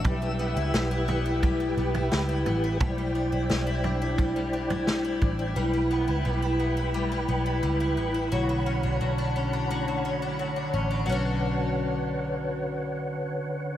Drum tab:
SD |----o-------o---|----o-------o---|----------------|----------------|
FT |o-----o-o--o--o-|o-----o-o--o--o-|----------------|----------------|
BD |o-------o-------|o-------o-----o-|----------------|----------------|

SD |----------------|
FT |----------------|
BD |----------------|